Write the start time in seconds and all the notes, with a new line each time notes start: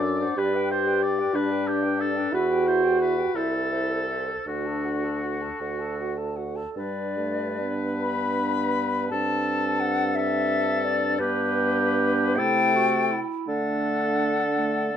Already playing: F#2 D4 D5
0.02 A4 D5
0.20 C5 F#5
0.37 G2 G4 B4 D5
0.54 B4 G5
0.71 G4 C5 D5
0.87 B4 G5
1.03 G4 D5
1.19 B4 G5
1.34 G2 D4 G4 B4 D5
1.51 B4 G5
1.68 G4 D5
1.83 B4 G5
2.00 G4 A4 D5
2.16 B4 G5
2.33 E2 E4 F#4 B4 E5
2.50 G4 G5
2.67 E4 C5 E5
2.84 G4 G5
3.00 E4 B4 E5
3.17 G4 G5
3.35 C2 E4 A4 C5 E5
3.53 A4 C5
3.72 C5 E5
3.90 A4 C5
4.10 C5 E5
4.27 A4 C5
4.46 D2 D4 F#4 F#5
4.66 A4 A5
4.85 F#4 F#5
5.03 A4 A5
5.21 F#4 F#5
5.41 A4 A5
5.60 D2 F#4 F#5
5.79 A4 A5
5.99 F#4 F#5
6.17 A4 A5
6.36 F#4 F#5
6.56 A4 A5
6.74 G2 G3 D4 D5
6.79 B4
7.18 A3
7.61 B3
8.00 B5
9.09 G2 C4 D4 A4 A5
9.80 F#5
10.15 A4 E5
10.85 D5
11.19 G2 B3 G4 B4
12.36 C3 A3 E4 A4 G5
12.75 F#4
13.11 E4
13.47 D3 A3 D4 A4 F#5
14.57 A3